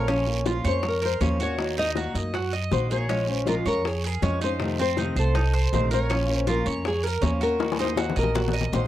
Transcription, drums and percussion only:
0.08 high bongo, long guiro
0.27 high bongo
0.46 high bongo, short guiro
0.64 high bongo, short guiro
0.83 high bongo, long guiro
1.21 high bongo, low bongo, short guiro
1.40 high bongo, short guiro
1.59 high bongo, long guiro
1.77 high bongo
1.96 high bongo, short guiro
2.15 high bongo, short guiro
2.34 high bongo, long guiro
2.71 high bongo, low bongo, short guiro
2.90 high bongo, short guiro
3.09 high bongo, long guiro
3.29 high bongo
3.47 high bongo, short guiro
3.65 high bongo, short guiro
3.85 high bongo, long guiro
4.22 high bongo, low bongo, short guiro
4.41 high bongo, short guiro
4.60 high bongo, long guiro
4.79 high bongo
4.97 high bongo, short guiro
5.16 high bongo, short guiro
5.35 high bongo, long guiro
5.73 high bongo, low bongo, short guiro
5.91 high bongo, short guiro
6.10 high bongo, long guiro
6.29 high bongo
6.47 high bongo, short guiro
6.66 high bongo, short guiro
6.85 high bongo, long guiro
7.23 high bongo, low bongo, short guiro
7.41 high bongo, short guiro
7.60 high bongo, long guiro
7.72 high bongo
7.84 high bongo
7.97 high bongo, short guiro
8.10 low bongo
8.17 short guiro
8.23 low bongo
8.35 low bongo, long guiro
8.48 low bongo
8.61 low bongo
8.73 low bongo, short guiro

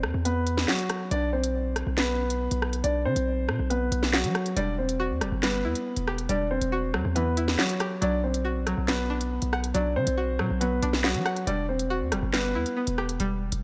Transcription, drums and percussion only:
0.03 cross-stick
0.25 closed hi-hat
0.47 closed hi-hat
0.58 snare
0.68 snare, clap
0.79 closed hi-hat
0.89 cross-stick, closed hi-hat
1.11 closed hi-hat
1.44 closed hi-hat
1.76 cross-stick, closed hi-hat
1.98 snare, clap, closed hi-hat
2.30 closed hi-hat
2.51 closed hi-hat
2.62 cross-stick
2.73 closed hi-hat
2.84 closed hi-hat
3.16 closed hi-hat
3.49 cross-stick
3.71 closed hi-hat
3.92 closed hi-hat
4.03 snare
4.13 snare, clap
4.24 closed hi-hat
4.35 cross-stick, closed hi-hat
4.46 closed hi-hat
4.57 closed hi-hat
4.89 closed hi-hat
5.21 cross-stick, closed hi-hat
5.43 snare, clap, closed hi-hat
5.75 closed hi-hat
5.96 closed hi-hat
6.08 cross-stick
6.18 closed hi-hat
6.29 closed hi-hat
6.62 closed hi-hat
6.94 cross-stick
7.16 closed hi-hat
7.37 closed hi-hat
7.48 snare
7.59 snare, clap
7.69 closed hi-hat
7.80 cross-stick, closed hi-hat
8.02 closed hi-hat
8.34 closed hi-hat
8.67 cross-stick, closed hi-hat
8.88 snare, clap, closed hi-hat
9.21 closed hi-hat
9.42 closed hi-hat
9.53 cross-stick
9.64 closed hi-hat
9.75 closed hi-hat
10.07 closed hi-hat
10.39 cross-stick
10.61 closed hi-hat
10.83 closed hi-hat
10.93 snare
11.04 snare, clap
11.14 closed hi-hat
11.26 cross-stick, closed hi-hat
11.36 closed hi-hat
11.47 closed hi-hat
11.79 closed hi-hat
12.12 cross-stick, closed hi-hat
12.33 snare, clap, closed hi-hat
12.66 closed hi-hat
12.87 closed hi-hat
12.98 cross-stick
13.09 closed hi-hat
13.20 closed hi-hat
13.52 closed hi-hat

